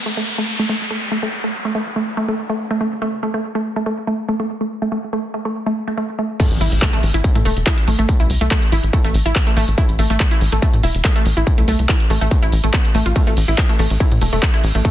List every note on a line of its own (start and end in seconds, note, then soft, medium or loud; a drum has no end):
0.00 downlifter medium
0.06 0.16 A3 medium
0.17 0.21 A3 medium
0.38 0.42 A3 medium
0.59 0.68 A3 medium
0.69 0.73 A3 medium
0.90 0.94 A3 medium
1.12 1.22 A3 medium
1.23 1.26 A3 medium
1.44 1.47 A3 medium
1.65 1.74 A3 medium
1.75 1.79 A3 medium
1.96 2.00 A3 medium
2.17 2.27 A3 medium
2.28 2.32 A3 medium
2.49 2.53 A3 medium
2.71 2.80 A3 medium
2.81 2.85 A3 medium
3.02 3.06 A3 medium
3.23 3.33 A3 medium
3.34 3.38 A3 medium
3.55 3.59 A3 medium
3.76 3.85 A3 medium
3.86 3.90 A3 medium
4.07 4.11 A3 medium
4.29 4.39 A3 medium
4.40 4.43 A3 medium
4.61 4.64 A3 medium
4.82 4.91 A3 medium
4.92 4.96 A3 medium
5.13 5.17 A3 medium
5.34 5.44 A3 medium
5.45 5.49 A3 medium
5.66 5.70 A3 medium
5.88 5.96 A3 medium
5.97 6.01 A3 medium
6.19 6.23 A3 medium
6.40 6.46 A3 loud
6.40 kick loud
6.40 closed hi-hat medium
6.40 crash loud
6.40 impact medium
6.51 6.58 A1 medium
6.51 closed hi-hat medium
6.61 6.69 A1 medium
6.61 6.71 E4 medium
6.61 open hi-hat loud
6.72 6.79 A1 medium
6.72 closed hi-hat medium
6.82 6.86 A3 medium
6.82 kick loud
6.82 clap loud
6.82 closed hi-hat medium
6.93 6.99 A3 loud
6.93 closed hi-hat medium
7.03 7.11 A1 loud
7.03 open hi-hat loud
7.14 7.22 A1 medium
7.14 7.23 E4 medium
7.14 closed hi-hat medium
7.24 kick loud
7.24 closed hi-hat medium
7.35 7.43 A2 medium
7.35 7.39 A3 medium
7.35 closed hi-hat medium
7.45 7.54 E1 loud
7.45 7.52 A3 loud
7.45 open hi-hat loud
7.56 7.64 E1 medium
7.56 closed hi-hat medium
7.66 7.77 E4 medium
7.66 kick loud
7.66 clap loud
7.66 closed hi-hat medium
7.78 closed hi-hat medium
7.88 7.96 A1 medium
7.88 7.92 A3 medium
7.88 open hi-hat loud
7.99 8.06 A1 medium
7.99 8.05 A3 loud
7.99 closed hi-hat medium
8.09 kick loud
8.09 closed hi-hat medium
8.20 8.27 C2 medium
8.20 8.29 E4 medium
8.20 closed hi-hat medium
8.30 8.38 C2 medium
8.30 open hi-hat loud
8.41 8.49 C2 medium
8.41 8.45 A3 medium
8.41 closed hi-hat medium
8.51 8.58 A3 loud
8.51 kick loud
8.51 clap loud
8.51 closed hi-hat medium
8.62 closed hi-hat medium
8.72 8.81 A1 loud
8.72 8.82 E4 medium
8.72 open hi-hat loud
8.83 8.91 A1 medium
8.83 closed hi-hat medium
8.93 8.97 A3 medium
8.93 kick loud
8.93 closed hi-hat medium
9.04 9.12 A1 medium
9.04 9.10 A3 loud
9.04 closed hi-hat medium
9.14 9.23 A1 loud
9.14 open hi-hat loud
9.26 9.33 A1 medium
9.26 9.35 E4 medium
9.26 closed hi-hat medium
9.36 kick loud
9.36 clap loud
9.36 closed hi-hat medium
9.47 9.50 A3 medium
9.47 closed hi-hat medium
9.57 9.65 A1 loud
9.57 9.63 A3 loud
9.57 open hi-hat loud
9.68 9.75 A1 medium
9.68 closed hi-hat medium
9.78 9.88 E4 medium
9.78 kick loud
9.78 closed hi-hat medium
9.89 9.96 A1 medium
9.89 closed hi-hat medium
9.99 10.07 A1 medium
9.99 10.03 A3 medium
9.99 open hi-hat loud
10.10 10.18 A1 medium
10.10 10.16 A3 loud
10.10 closed hi-hat medium
10.20 kick loud
10.20 clap loud
10.20 closed hi-hat medium
10.31 10.40 E4 medium
10.31 closed hi-hat medium
10.41 10.50 A1 loud
10.41 open hi-hat loud
10.52 10.60 A1 medium
10.52 10.56 A3 medium
10.52 closed hi-hat medium
10.62 10.69 A3 loud
10.62 kick loud
10.62 closed hi-hat medium
10.73 10.81 A2 medium
10.73 closed hi-hat medium
10.83 10.92 E1 loud
10.83 10.93 E4 medium
10.83 open hi-hat loud
10.95 11.02 E1 medium
10.95 closed hi-hat medium
11.05 11.09 A3 medium
11.05 kick loud
11.05 clap loud
11.05 closed hi-hat medium
11.16 11.22 A3 loud
11.16 closed hi-hat medium
11.26 11.34 A1 loud
11.26 open hi-hat loud
11.37 11.44 A1 medium
11.37 11.46 E4 medium
11.37 closed hi-hat medium
11.47 kick loud
11.47 closed hi-hat medium
11.58 11.65 C2 medium
11.58 11.62 A3 medium
11.58 closed hi-hat medium
11.68 11.76 C2 medium
11.68 11.75 A3 loud
11.68 open hi-hat loud
11.79 11.87 C2 medium
11.79 closed hi-hat medium
11.89 11.99 E4 medium
11.89 kick loud
11.89 clap loud
11.89 closed hi-hat medium
12.00 closed hi-hat medium
12.10 12.19 A1 loud
12.10 12.14 A3 medium
12.10 open hi-hat loud
12.21 12.29 A1 medium
12.21 12.27 A3 loud
12.21 closed hi-hat medium
12.31 kick loud
12.31 closed hi-hat medium
12.42 12.50 A1 medium
12.42 12.51 E4 medium
12.42 closed hi-hat medium
12.52 12.61 A1 loud
12.52 open hi-hat loud
12.64 12.71 A1 medium
12.64 12.70 A3 medium
12.64 closed hi-hat medium
12.73 12.80 B3 medium
12.73 kick loud
12.73 clap loud
12.73 closed hi-hat medium
12.85 closed hi-hat medium
12.95 13.03 A1 loud
12.95 13.05 A3 loud
12.95 open hi-hat loud
13.06 13.13 A1 medium
13.06 13.15 F4 medium
13.06 closed hi-hat medium
13.16 13.20 A3 medium
13.16 kick loud
13.16 closed hi-hat medium
13.16 ride medium
13.27 13.34 A1 medium
13.27 13.33 A3 loud
13.27 closed hi-hat medium
13.37 13.45 A1 loud
13.37 open hi-hat loud
13.37 ride medium
13.48 13.56 A1 medium
13.48 13.57 E4 medium
13.48 closed hi-hat soft
13.58 kick loud
13.58 clap loud
13.58 closed hi-hat medium
13.69 13.73 A3 medium
13.69 closed hi-hat medium
13.79 13.88 A1 loud
13.79 13.86 A3 loud
13.79 open hi-hat loud
13.79 ride medium
13.90 13.98 A1 medium
13.90 closed hi-hat medium
14.00 14.10 E4 medium
14.00 kick loud
14.00 closed hi-hat medium
14.00 ride medium
14.12 14.19 A2 medium
14.12 closed hi-hat medium
14.21 14.30 E1 loud
14.21 14.25 A3 medium
14.21 open hi-hat loud
14.21 ride medium
14.33 14.40 E1 medium
14.33 14.39 A3 loud
14.33 closed hi-hat medium
14.43 kick loud
14.43 clap loud
14.43 closed hi-hat medium
14.43 ride medium
14.54 14.63 E4 medium
14.54 closed hi-hat medium
14.64 14.72 A1 medium
14.64 open hi-hat loud
14.64 ride medium
14.75 14.82 A1 medium
14.75 14.78 A3 medium
14.75 closed hi-hat medium
14.85 14.91 A3 loud
14.85 kick loud
14.85 closed hi-hat medium
14.85 ride medium